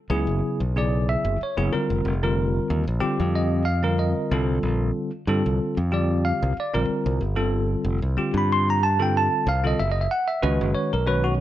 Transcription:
0.10 fingered electric bass C#2, tine electric piano C#3 F#3 B3 E4 G#4
0.27 fingered electric bass F#1
0.60 fingered electric bass B1
0.76 tine electric piano C#3 F#3 B3 E4 G#4 D5
1.09 tine electric piano E5
1.25 fingered electric bass F#1
1.41 tine electric piano C#5, muted fingered electric bass stroke
1.57 fingered electric bass F#1, tine electric piano C#3 F#3 B3 E4 G#4
1.73 tine electric piano D3 G3 C4 F4 A#4
1.90 fingered electric bass F1
2.05 fingered electric bass F1
2.23 tine electric piano D3 G3 C4 F4 A#4
2.70 fingered electric bass D#2
2.87 fingered electric bass A#1
3.00 tine electric piano D3 G3 C4 F4 G4, muted fingered electric bass stroke
3.20 fingered electric bass F2
3.35 tine electric piano D#5
3.65 tine electric piano F5
3.83 tine electric piano D3 G3 C4 F4 A#4
3.99 tine electric piano D#5
4.31 fingered electric bass C2, tine electric piano D3 G3 C4 F4 A4
4.63 fingered electric bass A#1
5.27 fingered electric bass G2, tine electric piano D3 G3 C4 F4 A4
5.46 fingered electric bass C2
5.77 fingered electric bass F2
5.91 tine electric piano D3 G3 C4 F4 G4 D5
6.25 tine electric piano F5
6.42 fingered electric bass C2
6.60 tine electric piano D5
6.74 fingered electric bass A#1, tine electric piano D3 G3 C4 F4 A#4
6.89 muted fingered electric bass stroke
7.06 fingered electric bass C2
7.21 fingered electric bass G1
7.36 tine electric piano D3 G3 C4 F4 A4
7.85 fingered electric bass F1
8.02 fingered electric bass C2
8.17 tine electric piano D3 G3 C4 F4 G4, muted fingered electric bass stroke
8.34 fingered electric bass G2, tine electric piano B5
8.53 tine electric piano C6
8.70 tine electric piano A#5
8.83 tine electric piano A5
8.99 tine electric piano D3 G3 C4 F4 A4 G5
9.17 tine electric piano A5
9.47 fingered electric bass C2, tine electric piano F5
9.64 tine electric piano D3 G3 C4 F4 A4 D#5
9.80 fingered electric bass F#1, tine electric piano E5
9.92 tine electric piano D#5
10.01 tine electric piano E5
10.11 tine electric piano F#5
10.28 tine electric piano E5
10.42 fingered electric bass C#2, tine electric piano D#3 G#3 C#4 F#4 B4 D#5
10.61 fingered electric bass F#1
10.75 tine electric piano C#5
10.93 fingered electric bass B1, tine electric piano A#4
11.06 tine electric piano D#3 G#3 C#4 F#4 B4 C#5
11.24 tine electric piano F#4

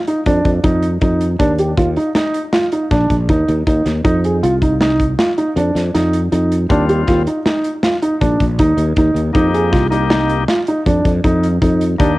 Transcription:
0.07 grand piano D#4, closed hi-hat
0.26 fretless electric bass F2, grand piano D4, kick, closed hi-hat
0.45 fretless electric bass F2, kick, closed hi-hat
0.64 fretless electric bass F2, grand piano D#4, kick, closed hi-hat
0.83 closed hi-hat
1.01 fretless electric bass F2, grand piano D#4, kick, closed hi-hat
1.21 closed hi-hat
1.39 fretless electric bass D#2, grand piano D4, kick, closed hi-hat
1.59 grand piano G4, closed hi-hat
1.77 fretless electric bass D#2, grand piano F4, kick, closed hi-hat
1.97 grand piano D#4, closed hi-hat
2.15 grand piano D#4, snare, closed hi-hat
2.34 closed hi-hat
2.53 grand piano F4, snare, closed hi-hat
2.72 grand piano D#4, closed hi-hat
2.91 fretless electric bass A#1, grand piano D4, kick, snare, closed hi-hat
3.10 fretless electric bass A#1, kick, closed hi-hat
3.29 fretless electric bass D#2, grand piano D#4, kick, closed hi-hat
3.48 fretless electric bass D#2, closed hi-hat
3.67 fretless electric bass D#2, grand piano D#4, kick, closed hi-hat
3.86 fretless electric bass D#2, snare, closed hi-hat
4.04 fretless electric bass F2, grand piano D#4, kick, closed hi-hat
4.24 grand piano G#4, closed hi-hat
4.43 fretless electric bass C2, grand piano F4, closed hi-hat
4.62 grand piano D#4, kick, closed hi-hat
4.81 grand piano D#4, snare, closed hi-hat
5.00 kick, closed hi-hat
5.19 grand piano F4, snare, closed hi-hat
5.38 grand piano D#4, closed hi-hat
5.56 fretless electric bass F2, grand piano D4, closed hi-hat
5.75 fretless electric bass F2, snare, closed hi-hat
5.94 fretless electric bass F2, grand piano D#4, snare, closed hi-hat
6.13 closed hi-hat
6.32 fretless electric bass F2, grand piano D#4, closed hi-hat
6.52 closed hi-hat
6.69 fretless electric bass D#2, tonewheel organ G3 C4 F4, grand piano D4, kick, closed hi-hat
6.89 grand piano G4, closed hi-hat
7.07 fretless electric bass D#2, grand piano F4, kick, snare, closed hi-hat
7.27 grand piano D#4, closed hi-hat
7.46 grand piano D#4, snare, closed hi-hat
7.64 closed hi-hat
7.83 grand piano F4, snare, closed hi-hat
8.02 grand piano D#4, closed hi-hat
8.21 fretless electric bass A#1, grand piano D4, kick, closed hi-hat
8.40 fretless electric bass A#1, kick, closed hi-hat
8.59 fretless electric bass D#2, grand piano D#4, kick, closed hi-hat
8.77 fretless electric bass D#2, closed hi-hat
8.96 fretless electric bass D#2, grand piano D#4, kick, closed hi-hat
9.14 fretless electric bass D#2, closed hi-hat
9.33 fretless electric bass F2, tonewheel organ A#3 D#4 G4, grand piano D#4, kick, closed hi-hat
9.54 grand piano G#4, closed hi-hat
9.72 fretless electric bass C2, grand piano F4, kick, snare, closed hi-hat
9.90 tonewheel organ A#3 D#4 G4, grand piano D#4, closed hi-hat
10.10 grand piano D#4, snare, closed hi-hat
10.29 closed hi-hat
10.48 grand piano F4, snare, closed hi-hat
10.67 grand piano D#4, closed hi-hat
10.86 fretless electric bass F2, grand piano D4, kick, closed hi-hat
11.05 fretless electric bass F2, kick, closed hi-hat
11.24 fretless electric bass F2, grand piano D#4, kick, closed hi-hat
11.43 closed hi-hat
11.62 fretless electric bass F2, grand piano D#4, kick, closed hi-hat
11.81 closed hi-hat
11.99 fretless electric bass D#2, tonewheel organ A#3 D#4 G4, grand piano D4, kick, closed hi-hat

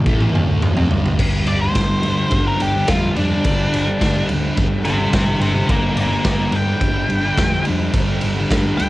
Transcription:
0.06 fingered electric bass A1, distorted electric guitar A2 E3 A3, kick
0.21 mid tom
0.32 fingered electric bass D#2, distorted electric guitar D#3 A#3, mid tom
0.46 fingered electric bass D2, distorted electric guitar D3 A3
0.61 fingered electric bass D#2, distorted electric guitar D#3 A#3, mid tom
0.74 fingered electric bass F2, distorted electric guitar F3 C4, floor tom
0.88 fingered electric bass G1, distorted electric guitar G2 D3 G3, floor tom
1.06 floor tom
1.15 fingered electric bass G1, distorted electric guitar G2 D3
1.19 distorted electric guitar G3, kick, crash
1.46 fingered electric bass G1, lead electric guitar D5, ride
1.57 distorted electric guitar G3
1.61 distorted electric guitar D3, lead electric guitar C5
1.71 distorted electric guitar G2 D3, kick, ride
1.76 fingered electric bass G1, distorted electric guitar G3, snare
2.02 distorted electric guitar G2 D3, fingered electric bass G2, ride
2.06 distorted electric guitar G3
2.14 distorted electric guitar G3
2.19 distorted electric guitar D3
2.27 distorted electric guitar G2 D3, ride
2.32 fingered electric bass G1, distorted electric guitar G3, kick
2.42 distorted electric guitar G3
2.47 distorted electric guitar D3, lead electric guitar A#4
2.57 distorted electric guitar G2 D3, ride
2.61 fingered electric bass G1, distorted electric guitar G3, lead electric guitar G4
2.72 distorted electric guitar G3
2.77 distorted electric guitar D3
2.85 fingered electric bass F2, distorted electric guitar G2 D3, kick, snare, ride
2.89 distorted electric guitar G3, lead electric guitar F4
3.15 fingered electric bass F2, distorted electric guitar G2 D3, lead electric guitar D4, ride
3.20 distorted electric guitar G3
3.31 distorted electric guitar G3
3.36 distorted electric guitar D3
3.44 fingered electric bass G1, distorted electric guitar G2 D3, kick, ride
3.49 distorted electric guitar G3
3.74 fingered electric bass G1, ride
3.86 distorted electric guitar D3 G3
4.00 fingered electric bass G1, distorted electric guitar G2 D3, kick, snare, ride
4.04 distorted electric guitar G3
4.29 fingered electric bass D2, distorted electric guitar G2, ride
4.33 distorted electric guitar D3 G3
4.43 distorted electric guitar G3
4.48 distorted electric guitar D3
4.56 distorted electric guitar G2 D3, fingered electric bass G2, kick, ride
4.60 distorted electric guitar G3
4.68 distorted electric guitar G3
4.73 distorted electric guitar D3
4.81 fingered electric bass G1, distorted electric guitar G2 D3, lead electric guitar C5, ride
4.86 distorted electric guitar G3, lead electric guitar G4
4.96 distorted electric guitar G3
5.00 distorted electric guitar D3
5.09 fingered electric bass G1, distorted electric guitar G2 D3, kick, ride
5.13 distorted electric guitar G3, lead electric guitar G4 C5, snare
5.37 fingered electric bass G1, distorted electric guitar G2 D3
5.41 distorted electric guitar G3, lead electric guitar G4 C5, ride
5.53 distorted electric guitar G3
5.58 distorted electric guitar D3
5.65 fingered electric bass G1, distorted electric guitar G2 D3
5.69 distorted electric guitar G3, lead electric guitar F4 D5, kick, ride
5.96 fingered electric bass G1, ride
6.00 lead electric guitar F4 D5
6.08 distorted electric guitar D3 G3
6.21 fingered electric bass G1, distorted electric guitar G2 D3 G3, kick, snare, ride
6.31 lead electric guitar F4 D5
6.49 distorted electric guitar G2 D3, fingered electric bass G2, ride
6.54 distorted electric guitar G3, lead electric guitar G5
6.64 distorted electric guitar G3
6.68 distorted electric guitar D3
6.77 distorted electric guitar G2 D3
6.81 fingered electric bass G1, distorted electric guitar G3, kick, ride
6.94 distorted electric guitar G3
6.98 distorted electric guitar D3
7.09 fingered electric bass G1, distorted electric guitar G2 D3, ride
7.13 distorted electric guitar G3
7.21 distorted electric guitar G3
7.26 distorted electric guitar D3
7.37 fingered electric bass F2, distorted electric guitar G2 D3, kick, snare, ride
7.42 distorted electric guitar G3
7.65 fingered electric bass F2, distorted electric guitar G2 D3, ride
7.70 distorted electric guitar G3
7.79 distorted electric guitar G3
7.84 distorted electric guitar D3
7.92 fingered electric bass G1, distorted electric guitar G2 D3, kick, ride
7.97 distorted electric guitar G3
8.21 fingered electric bass G1, ride
8.35 distorted electric guitar G3
8.40 distorted electric guitar D3
8.49 fingered electric bass G1, distorted electric guitar G2 D3, kick, snare, ride
8.54 distorted electric guitar G3
8.77 fingered electric bass D2, distorted electric guitar G2 D3 G3, lead electric guitar G5, ride

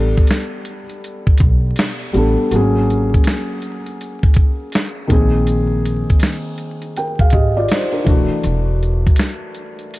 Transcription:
Already playing: upright bass A1, felt piano G3 B3 D4 A4
0.17 kick, closed hi-hat
0.27 snare, closed hi-hat
0.65 closed hi-hat
0.89 closed hi-hat
1.04 closed hi-hat
1.27 kick
1.38 upright bass B1, kick, closed hi-hat
1.76 snare, closed hi-hat
2.13 upright bass A1, felt piano G3 B3 D4, closed hi-hat
2.18 felt piano A4
2.50 upright bass G#1, felt piano F#3 A#3 C4, closed hi-hat
2.55 felt piano G#4
2.60 felt piano C#4
2.90 closed hi-hat
3.14 kick, closed hi-hat
3.24 snare, closed hi-hat
3.62 closed hi-hat
3.86 closed hi-hat
4.01 closed hi-hat
4.23 kick
4.34 kick, closed hi-hat
4.72 snare, closed hi-hat
5.07 upright bass A#1, felt piano D#3 A#3 C4, kick, closed hi-hat
5.12 felt piano G#4
5.47 closed hi-hat
5.85 closed hi-hat
6.10 kick, closed hi-hat
6.20 snare, closed hi-hat
6.58 closed hi-hat
6.82 closed hi-hat
6.97 felt piano A#4 G5, closed hi-hat
7.19 felt piano G#4 F5, kick
7.30 upright bass G#1, felt piano G4 D#5, kick, closed hi-hat
7.57 felt piano F4 D5
7.68 felt piano D#4 C5, snare, closed hi-hat
7.92 felt piano D4 A#4
8.04 upright bass E1, felt piano E3 A3 D4, kick, closed hi-hat
8.09 felt piano F#4
8.43 upright bass E1, closed hi-hat
8.83 closed hi-hat
9.07 kick, closed hi-hat
9.16 snare, closed hi-hat
9.55 closed hi-hat
9.79 closed hi-hat
9.94 closed hi-hat

